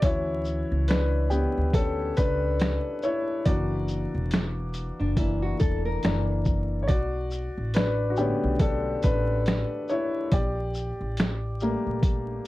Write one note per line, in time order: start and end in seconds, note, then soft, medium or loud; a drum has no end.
0.02 0.62 D2 medium
0.02 3.42 E3 medium
0.02 1.74 C#4 medium
0.02 0.86 E4 medium
0.02 3.42 F#4 medium
0.02 0.91 C#5 medium
0.02 kick medium
0.02 closed hi-hat medium
0.45 shaker soft
0.72 1.45 C#2 medium
0.88 1.29 D4 medium
0.88 1.33 B4 medium
0.88 finger snap medium
0.88 snare loud
0.88 closed hi-hat medium
1.30 1.72 B3 medium
1.30 1.75 G4 medium
1.30 shaker soft
1.57 2.10 D2 medium
1.74 2.15 C#4 medium
1.74 2.18 A4 medium
1.74 kick medium
1.74 closed hi-hat medium
2.17 2.77 C#2 medium
2.17 3.00 D4 medium
2.17 3.06 B4 loud
2.17 kick medium
2.17 closed hi-hat soft
2.17 shaker soft
2.60 finger snap medium
2.60 snare loud
2.60 closed hi-hat medium
3.02 3.44 E4 medium
3.02 3.47 C#5 loud
3.02 shaker soft
3.46 4.05 F#1 medium
3.46 4.05 E3 medium
3.46 4.06 A#3 soft
3.46 4.06 D4 medium
3.46 4.71 F#4 medium
3.46 4.70 D5 loud
3.46 kick medium
3.46 closed hi-hat medium
3.88 shaker soft
4.15 4.88 E1 medium
4.31 finger snap medium
4.31 snare loud
4.31 closed hi-hat medium
4.74 closed hi-hat soft
4.74 shaker soft
4.99 5.52 F#1 medium
4.99 5.17 D4 medium
5.17 5.57 E3 medium
5.17 5.57 A#3 soft
5.17 5.57 D4 medium
5.17 5.41 E4 medium
5.17 kick medium
5.17 closed hi-hat medium
5.42 5.59 F#4 medium
5.60 5.98 E1 medium
5.60 5.84 A4 medium
5.60 kick medium
5.60 closed hi-hat soft
5.60 shaker soft
5.85 6.26 A#4 medium
6.03 6.90 F#1 loud
6.03 6.63 E3 medium
6.03 6.63 A#3 soft
6.03 6.63 D4 medium
6.03 finger snap loud
6.03 snare loud
6.03 closed hi-hat medium
6.45 kick medium
6.45 shaker soft
6.83 6.89 C#5 medium
6.88 7.48 B1 medium
6.88 7.71 F#4 medium
6.88 7.76 D5 loud
6.88 kick medium
6.88 closed hi-hat medium
7.31 shaker soft
7.58 8.31 A1 medium
7.74 8.10 D4 medium
7.74 8.13 B4 medium
7.74 finger snap medium
7.74 snare loud
7.74 closed hi-hat medium
8.10 8.17 F#4 medium
8.17 10.28 D3 medium
8.17 10.28 A3 soft
8.17 8.58 B3 medium
8.17 10.28 C#4 medium
8.17 8.62 G4 medium
8.17 shaker soft
8.43 8.95 B1 medium
8.59 9.01 D4 medium
8.59 9.05 A4 medium
8.59 kick loud
8.59 closed hi-hat medium
9.03 9.62 A1 medium
9.03 9.86 D4 medium
9.03 9.85 B4 loud
9.03 kick medium
9.03 closed hi-hat soft
9.03 shaker soft
9.46 finger snap medium
9.46 snare loud
9.46 closed hi-hat medium
9.88 10.30 E4 medium
9.88 10.29 C#5 medium
9.88 shaker soft
10.32 10.91 A#1 loud
10.32 11.57 G4 medium
10.32 11.57 D5 loud
10.32 kick loud
10.32 closed hi-hat medium
10.74 shaker medium
11.01 11.74 A1 medium
11.17 finger snap loud
11.17 snare loud
11.17 closed hi-hat medium
11.60 12.47 G3 medium
11.60 12.47 A3 soft
11.60 12.47 A#3 medium
11.60 shaker soft
11.87 12.38 A#1 medium
12.03 kick loud
12.03 closed hi-hat medium